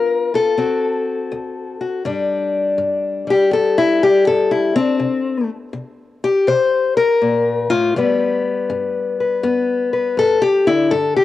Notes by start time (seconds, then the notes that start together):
Already playing: G2 B3 F4 A#4
0.34 F4 A4
0.57 D2 C4 F#4
1.32 D2
1.81 F#4
2.05 G2 G3 D4
2.78 G2
3.27 G3 G4
3.51 G2 A4
3.78 E4
4.03 G3 G4
4.27 G2 A4
4.51 E4
4.76 C4 D4
4.99 C3
5.73 C3
6.24 G4
6.47 C3 C5
6.97 A#4
7.22 A#2
7.70 A2 F4
7.96 G2 G3 B3 B4
8.70 G2
9.20 B4
9.43 G2 B3
9.93 B4
10.17 G2 A4
10.42 G4
10.67 D3 E4
10.91 G2 A4
11.16 G4